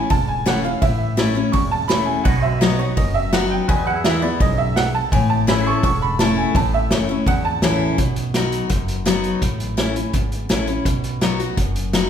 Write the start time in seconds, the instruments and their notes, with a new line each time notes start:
Already playing: steel-string acoustic guitar C#4, pedal steel guitar A4 C#5 E5
0.10 upright bass E1, steel-string acoustic guitar E2, upright piano A5, kick, open hi-hat
0.28 upright piano G#5
0.46 steel-string acoustic guitar E3 A3 C#4 E4, upright piano F#5, snare, open hi-hat
0.64 steel-string acoustic guitar C#4 E4, upright piano F5
0.82 upright bass A1, steel-string acoustic guitar A2, upright piano E5, kick, open hi-hat
1.17 steel-string acoustic guitar E3 A3 C#4 E4, snare, open hi-hat
1.35 steel-string acoustic guitar C#4 E4
1.52 upright bass E1, steel-string acoustic guitar E2, upright piano C#6, kick, open hi-hat
1.71 upright piano A5
1.88 steel-string acoustic guitar E3 A3 C#4 E4, upright piano B5, snare, open hi-hat
2.06 upright piano G#5
2.24 upright bass B1, steel-string acoustic guitar B2, pedal steel guitar F#4 C#5 D#5, upright piano F#5, kick, open hi-hat
2.42 upright piano E5
2.51 pedal steel guitar B4
2.61 steel-string acoustic guitar F#3 B3 D#4 F#4, upright piano D#5, snare, open hi-hat
2.79 steel-string acoustic guitar D#4 F#4, upright piano C#5
2.97 upright bass F#1, steel-string acoustic guitar F#2, upright piano D#5, kick, open hi-hat
3.14 upright piano E5
3.33 steel-string acoustic guitar F#3 B3 D#4 F#4, upright piano F#5, snare, open hi-hat
3.50 upright piano G5
3.68 upright bass E2, steel-string acoustic guitar E2, pedal steel guitar F#4 B4 D#5, upright piano G#5, kick, open hi-hat
3.87 pedal steel guitar E5, upright piano F#5
3.93 pedal steel guitar G#4
4.04 steel-string acoustic guitar E3 G#3 B3 E4, upright piano E5, snare, open hi-hat
4.22 steel-string acoustic guitar B3 E4, upright piano D5
4.40 upright bass B1, steel-string acoustic guitar F#2, upright piano D#5, kick, open hi-hat
4.58 upright piano E5
4.76 steel-string acoustic guitar G#2, upright piano F#5, snare, open hi-hat
4.95 upright piano A5
5.12 upright bass A1, steel-string acoustic guitar A2, upright piano G#5, kick, open hi-hat
5.30 upright piano A5
5.47 steel-string acoustic guitar E3 A3 C#4 E4, pedal steel guitar G#4 B4 E5, upright piano B5, snare, open hi-hat
5.67 pedal steel guitar A4, upright piano C#6
5.74 pedal steel guitar C#5
5.83 upright bass E1, steel-string acoustic guitar E2, upright piano C#6, kick, open hi-hat
6.02 upright piano B5
6.19 steel-string acoustic guitar E3 A3 C#4 E4, upright piano A5, snare, open hi-hat
6.38 upright piano G#5
6.55 upright bass A1, steel-string acoustic guitar A2, upright piano A5, kick, open hi-hat
6.74 upright piano E5
6.90 upright bass F#1, steel-string acoustic guitar E3 A3 C#4 E4, snare, open hi-hat
7.09 steel-string acoustic guitar C#4 E4
7.26 upright bass G#1, steel-string acoustic guitar E2, upright piano F#5, kick, open hi-hat
7.45 upright piano A5
7.62 upright bass A1, steel-string acoustic guitar E3 A3 C#4 E4, snare, open hi-hat
7.98 upright bass B1, steel-string acoustic guitar B2, kick, closed hi-hat
8.16 closed hi-hat
8.34 steel-string acoustic guitar F#3 B3 D#4 F#4, snare, closed hi-hat
8.52 closed hi-hat
8.70 upright bass F#1, steel-string acoustic guitar F#2, kick, closed hi-hat
8.88 closed hi-hat
9.06 steel-string acoustic guitar F#3 B3 D#4 F#4, snare, closed hi-hat
9.24 closed hi-hat
9.42 upright bass A1, steel-string acoustic guitar A2, kick, closed hi-hat
9.60 closed hi-hat
9.77 steel-string acoustic guitar E3 A3 C#4 E4, snare, closed hi-hat
9.96 steel-string acoustic guitar C#4 E4, closed hi-hat
10.13 upright bass G#1, steel-string acoustic guitar E2, kick, closed hi-hat
10.32 closed hi-hat
10.49 upright bass A1, steel-string acoustic guitar E3 A3 C#4 E4, snare, closed hi-hat
10.67 steel-string acoustic guitar C#4 E4, closed hi-hat
10.85 upright bass B1, steel-string acoustic guitar B2, kick, closed hi-hat
11.04 closed hi-hat
11.21 steel-string acoustic guitar F#3 B3 D#4 F#4, snare, closed hi-hat
11.39 steel-string acoustic guitar D#4 F#4, closed hi-hat
11.57 upright bass F#1, steel-string acoustic guitar F#2, kick, closed hi-hat
11.76 closed hi-hat
11.93 steel-string acoustic guitar F#3 B3 D#4 F#4, snare, closed hi-hat